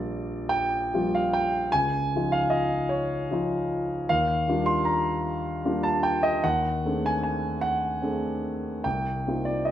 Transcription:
Already playing: A#1 F3 G3 A#3 F4 D5
0.49 G5
0.94 F3 G3 A#3 F4
1.15 F5
1.33 G5
1.72 C#2 G#5
2.16 F3 D#4 F4
2.32 F5
2.50 D#5
2.89 C#5
3.31 F3 D#4 F4
4.09 D#2 F5
4.48 G3 A#3 D4 F4
4.66 C6
4.85 A#5
5.64 G3 A#3 D4 F4
5.83 A5
6.03 G5
6.23 D#5
6.44 D#2 F#5
6.85 A3 C4 D4 G#4
7.06 G#5
7.23 G#5
7.61 F#5
8.02 A3 C4 D4 G#4
8.84 C2 G5
9.27 A#3 C4 D#4 F4
9.45 D5
9.65 D#5

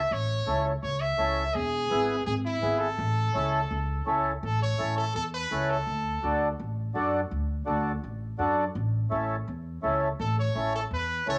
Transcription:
Already playing: E5
0.11 A1 C#5
0.46 C#2 C#4 E4 A4
0.83 C#2 C#5
1.01 E5
1.18 C#2 C#4 E4 A4
1.55 E1 G#4
1.91 G#1 B3 E4 G#4
2.26 G#1 G#4
2.45 E4
2.62 G#1 B3 E4 G#4
2.80 A4
2.98 A1
3.34 C#2 C#4 E4 A4
3.71 C#2
4.06 C#2 C#4 E4 A4
4.43 A1 A4
4.62 C#5
4.79 A1 C#4 E4 A4
4.97 A4
5.15 E2 A4
5.34 B4
5.51 C#2 C#4 E4 A4
5.70 A4
5.87 D2
6.23 D2 D4 F#4 A4
6.60 A1
6.95 F#2 D4 F#4 A4
7.31 D2
7.66 D2 D4 F#4 A4
8.04 A1
8.39 F#2 D4 F#4 A4
8.75 A1
9.11 A1 C#4 E4 A4
9.48 E2
9.83 C#2 C#4 E4 A4
10.20 A1 A4
10.39 C#5
10.55 A1 C#4 E4 A4
10.75 A4
10.91 E2 B4
11.27 C#2 C#4 E4 A4 C#5

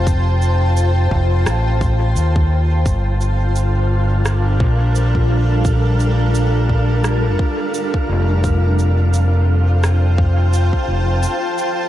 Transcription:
Already playing: F1 F4 C5 G5 A5
0.07 kick, cabasa
0.42 cabasa
0.77 cabasa
1.11 F1, kick
1.46 A1, cross-stick, cabasa
1.81 kick, cabasa
2.16 D#2, cabasa
2.36 kick
2.86 G1 G3 F4 F5, kick, cabasa
2.95 D4
3.21 A#4, cabasa
3.56 A4, cabasa
4.26 cross-stick, cabasa
4.60 A#1, kick
4.95 cabasa
5.15 kick
5.65 kick, cabasa
6.00 cabasa
6.35 cabasa
6.69 kick
7.04 cross-stick, cabasa
7.39 kick
7.74 cabasa
7.94 kick
8.09 F1
8.44 F4, kick, cabasa
8.73 C5
8.79 cabasa
8.91 G5
9.14 cabasa
9.25 A5
9.84 cross-stick, cabasa
10.18 kick
10.53 cabasa
10.73 kick
10.88 F1
11.23 cabasa
11.58 cabasa

